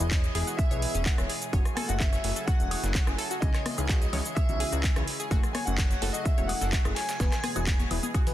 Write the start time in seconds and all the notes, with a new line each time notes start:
Already playing: B2 E3 G#3 E4 G#4 D#5 G#5
0.00 E1 E3 B3 E4 G#4 B4, shaker
0.11 C#5, kick, snare, clap, closed hi-hat, shaker
0.24 closed hi-hat, shaker
0.35 E1 E3 B3 E4 G#4 B4, snare, closed hi-hat, open hi-hat
0.47 F#4, closed hi-hat, shaker
0.57 E5, kick, closed hi-hat, shaker
0.71 B1 E3 B3 E4 G#4 B4 C#5, closed hi-hat, shaker
0.82 closed hi-hat, open hi-hat
0.94 E1 C#4, shaker
1.06 F#5, kick, snare, clap, closed hi-hat, shaker
1.18 E1 E3 B3 E4 G#4 C#5, cross-stick, closed hi-hat, shaker
1.29 G#4, closed hi-hat, open hi-hat
1.42 closed hi-hat, shaker
1.53 F#1 C#3 F#3 A3 C#4 E4 F#4 C#5, kick, closed hi-hat, shaker
1.65 cross-stick, closed hi-hat, shaker
1.75 A4 G#5, cross-stick, closed hi-hat, open hi-hat, high conga
1.88 F#1 A3 C#4 E4 F#4 F#5, closed hi-hat, shaker
1.99 E5, kick, snare, clap, closed hi-hat, shaker
2.13 C#5, snare, closed hi-hat, shaker
2.24 F#1 A3 C#4 E4 F#4, open hi-hat
2.36 A4, closed hi-hat, shaker
2.46 F#4 F#5, kick, closed hi-hat, shaker
2.60 E1 A3 C#4 E4 F#4, closed hi-hat, shaker
2.71 C#5, closed hi-hat, open hi-hat, high woodblock
2.83 F#1, snare, closed hi-hat, shaker
2.95 C#5, kick, snare, clap, closed hi-hat, shaker
3.07 F#1 A3 C#4 E4 G#4, cross-stick, closed hi-hat, high woodblock, shaker
3.18 A4, closed hi-hat, open hi-hat
3.31 F#4, closed hi-hat, shaker
3.40 C#2 C#3 E3 G#3 C#4 D#4 E4 G#4 D#5, kick, closed hi-hat, shaker
3.54 C#5, cross-stick, clap, closed hi-hat, shaker
3.66 cross-stick, closed hi-hat, open hi-hat, high conga
3.78 C#2 C#3 C#4 D#4 E4 G#4, high woodblock, shaker
3.89 F#4, kick, snare, clap, closed hi-hat, shaker
4.02 closed hi-hat, shaker
4.13 C#2 C#3 C#4 D#4 E4 G#4 C#5, snare, closed hi-hat, open hi-hat, low conga, high woodblock
4.25 closed hi-hat, shaker
4.35 C#5 E5, kick, closed hi-hat, high woodblock, shaker
4.49 B1 C#3 C#4 E4 F#4, closed hi-hat, low conga, shaker
4.60 G#4, closed hi-hat, open hi-hat
4.72 C#2 F#4, closed hi-hat, shaker
4.84 kick, snare, clap, closed hi-hat, shaker
4.96 C#2 C#3 C#4 D#4 E4 B4 C#5, cross-stick, closed hi-hat, low conga, shaker
5.07 closed hi-hat, open hi-hat
5.20 G#4, shaker
5.31 F#1 F#3 A3 C#4 E4 F#4, kick, closed hi-hat, shaker
5.43 cross-stick, closed hi-hat, shaker
5.53 C#5 G#5, cross-stick, closed hi-hat, open hi-hat, high conga
5.65 F#1 A3 C#4 E4 F#4 F#5, closed hi-hat, shaker
5.78 C#5, kick, snare, clap, closed hi-hat, shaker
5.91 snare, closed hi-hat, shaker
6.02 F#1 A3 C#4 E4 F#4 A4, open hi-hat
6.13 F#4 D#5, closed hi-hat, shaker
6.24 E5, kick, closed hi-hat, shaker
6.38 E1 A3 C#4 E4 F#4 C#5, closed hi-hat, shaker
6.48 F#5, closed hi-hat, open hi-hat, high woodblock
6.61 F#1 A4, snare, shaker
6.73 F#4, kick, snare, clap, closed hi-hat, shaker
6.85 F#1 A3 C#4 E4 G#4, cross-stick, closed hi-hat, high woodblock, shaker
6.95 C#5 G#5, snare, closed hi-hat, open hi-hat
7.09 snare, closed hi-hat, shaker
7.20 E1 B2 E3 G#3 B3 E4 G#4 B4 C#5, kick, snare, closed hi-hat, shaker
7.32 cross-stick, snare, clap, closed hi-hat, shaker
7.44 G#4, cross-stick, closed hi-hat, open hi-hat, high conga
7.56 E1 E3 B3 E4 F#4 G#4 B4, closed hi-hat, high woodblock, shaker
7.67 kick, snare, clap, closed hi-hat, shaker
7.80 C#5, closed hi-hat, high conga, shaker
7.91 E1 E3 B3 E4 G#4 B4, closed hi-hat, open hi-hat, low conga, high woodblock
8.03 G#4, high conga, shaker
8.14 F#4, kick, closed hi-hat, high woodblock, shaker
8.27 B1 E3 B3 E4 G#4 B4, closed hi-hat, low conga, shaker